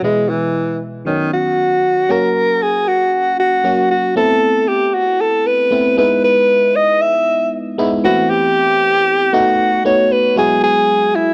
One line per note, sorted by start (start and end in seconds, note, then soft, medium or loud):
0.02 1.04 B2 medium
0.02 1.04 E3 medium
0.02 1.04 G#3 medium
0.02 0.31 G#3 medium
0.02 1.05 B3 medium
0.02 1.05 E4 medium
0.29 0.81 E3 medium
1.05 2.07 D#3 medium
1.05 1.30 D#3 medium
1.05 2.07 F#3 medium
1.05 2.08 B3 medium
1.05 2.08 C#4 medium
1.34 2.13 F#4 medium
2.09 2.73 F#3 medium
2.09 2.74 A#3 medium
2.09 2.74 C#4 medium
2.09 2.74 F#4 medium
2.09 2.64 A#4 medium
2.63 2.90 G#4 medium
2.88 3.39 F#4 medium
3.40 3.88 F#4 medium
3.64 3.96 F#3 medium
3.64 3.97 A#3 medium
3.64 3.97 C#4 medium
3.64 3.97 F#4 medium
3.91 4.15 F#4 medium
4.16 4.80 A3 medium
4.16 4.80 B3 medium
4.16 4.81 C4 medium
4.16 4.81 E4 medium
4.16 4.70 A4 loud
4.68 4.96 G4 medium
4.94 5.22 F#4 medium
5.21 5.48 A4 medium
5.47 5.98 B4 loud
5.71 5.97 A3 medium
5.71 5.96 B3 medium
5.71 5.98 C4 medium
5.71 5.97 E4 medium
5.97 6.80 G#3 medium
5.97 6.80 B3 medium
5.97 6.80 D#4 medium
5.97 6.81 E4 medium
5.97 6.22 B4 loud
6.24 6.77 B4 loud
6.75 7.03 D#5 loud
7.01 7.53 E5 loud
7.78 8.04 G#3 medium
7.78 8.03 B3 medium
7.78 8.04 D#4 medium
7.78 8.04 E4 loud
8.04 8.87 E3 medium
8.04 8.87 A3 medium
8.04 8.87 B3 medium
8.04 8.87 C4 medium
8.04 8.87 E4 medium
8.04 8.32 F#4 loud
8.30 9.35 G4 loud
9.33 9.75 A3 medium
9.33 9.75 B3 medium
9.33 9.75 D#4 medium
9.33 9.86 F#4 loud
9.33 9.75 F#4 loud
9.85 10.17 A3 medium
9.85 10.17 B3 medium
9.85 10.17 D#4 medium
9.85 10.18 F#4 medium
9.85 10.14 C#5 loud
10.12 10.38 B4 medium
10.36 11.01 F#3 medium
10.36 11.01 G#3 medium
10.36 11.01 B3 medium
10.36 11.01 E4 medium
10.36 11.01 F#4 medium
10.36 10.62 G#4 medium
10.64 11.17 G#4 loud
11.16 11.34 E4 loud